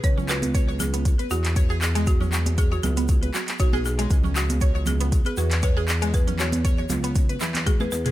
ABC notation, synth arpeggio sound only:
X:1
M:4/4
L:1/16
Q:"Swing 16ths" 1/4=118
K:C#m
V:1 name="Synth arpeggio sound"
z C F z c c z B, z B F z c G z G, | z C F z c c z B, z B F z c G z G, | z C F z c c z B, z B F z c G z G, | z C F z c c z B, z B E z F G z G |]